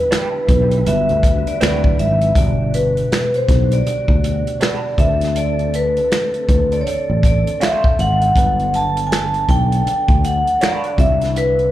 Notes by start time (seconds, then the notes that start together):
Already playing: D3 G3 B3 D4 E4 B4
0.11 D4 G4 B4, finger snap, snare, closed hi-hat
0.49 B1, kick, closed hi-hat
0.71 closed hi-hat
0.85 G1 G3 B3 D4 F#4 B4 E5, closed hi-hat
1.09 D2, closed hi-hat
1.23 kick, closed hi-hat
1.39 E5
1.47 D5, closed hi-hat
1.60 D2 C3 F#3 C4 D4 E4 F#4 A#4 B4 D5, finger snap, snare, closed hi-hat
1.69 B4
1.84 kick
1.99 G#1 E5, closed hi-hat
2.21 closed hi-hat
2.35 G1 B2 D3 G3 D4 F#4 D5, kick, closed hi-hat
2.74 B4, closed hi-hat
2.97 closed hi-hat
3.12 finger snap, snare, closed hi-hat
3.34 C5, closed hi-hat
3.49 B1, kick, snare, closed hi-hat
3.71 D5, closed hi-hat
3.87 D5, muted fretless electric bass stroke, closed hi-hat
4.08 D2, kick
4.24 closed hi-hat
4.47 closed hi-hat
4.61 D4 F#4 B4 D5, finger snap, snare, closed hi-hat
4.97 D2 A3 C4 D4 F#4 A4 B4 E5, kick, closed hi-hat
5.08 D5
5.21 snare, closed hi-hat
5.36 D5, closed hi-hat
5.59 closed hi-hat
5.74 B4, closed hi-hat
5.97 closed hi-hat
6.12 finger snap, snare, closed hi-hat
6.34 closed hi-hat
6.49 D2, kick, closed hi-hat
6.72 D5, closed hi-hat
6.81 C#5
6.87 D5, muted fretless electric bass stroke, closed hi-hat
7.10 A1
7.23 D5, kick, closed hi-hat
7.47 closed hi-hat
7.60 D4 F#4 C5 E5, finger snap, snare, closed hi-hat
7.84 kick
7.99 G#1 F#5, closed hi-hat
8.21 closed hi-hat
8.35 G1 F#3 G3 B3 D4 B4, kick, closed hi-hat
8.59 closed hi-hat
8.74 A5, closed hi-hat
8.97 closed hi-hat
9.07 G#5
9.12 A5, finger snap, snare, closed hi-hat
9.34 closed hi-hat
9.49 B1 G5, kick, closed hi-hat
9.72 closed hi-hat
9.86 muted fretless electric bass stroke, closed hi-hat
10.08 D2, kick, closed hi-hat
10.24 F#5, closed hi-hat
10.47 closed hi-hat
10.61 D4 F#4 B4 D5, finger snap, snare, closed hi-hat
10.84 closed hi-hat
10.97 C2 G3 C4 D4 E4 D5 E5, kick, closed hi-hat
11.21 snare, closed hi-hat
11.36 B4, closed hi-hat
11.59 closed hi-hat